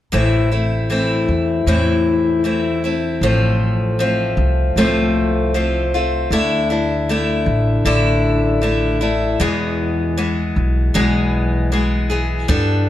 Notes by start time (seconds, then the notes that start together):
0.12 A1 A2 E3 A3 C4 E4
0.52 A3 C4 E4
0.90 E3 A3 C4 E4
1.28 E2
1.67 E2 A2 E3 A3 C4 E4
2.44 E3 A3 C4 E4
2.84 A3 C4 E4
3.21 A1 A2 F3 A3 C4 F4
3.99 F3 A3 C4 F4
4.37 C2
4.76 C2 A2 F3 A3 C4 F4
5.54 F3 A3 C4 F4
5.94 A3 C4 F4
6.31 D2 D3 A3 D4 E4
6.70 A3 D4 E4
7.09 D3 A3 D4 E4
7.46 A1
7.85 A1 D3 A3 D4 E4
8.62 D3 A3 D4 E4
9.01 A3 D4 E4
9.40 E2 B2 E3 G#3 B3 G#4
10.17 E3 G#3 B3 G#4
10.56 B1
10.94 B1 E2 B2 E3 G#3 B3 G#4
11.72 E3 G#3 B3 G#4
12.10 E3 G#3 B3 G#4
12.48 G2 G3 B3 D4 A4, kick